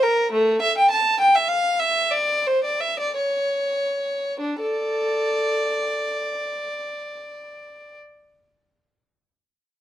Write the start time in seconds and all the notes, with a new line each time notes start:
0.03 A#4
0.32 A3
0.62 E5
0.78 G5
0.91 A5
1.21 G5
1.35 E5
1.49 F5
1.80 E5
2.11 D5
2.47 C5
2.64 D5
2.81 E5
3.00 D5
3.17 C#5
4.40 D4
4.62 A4 D5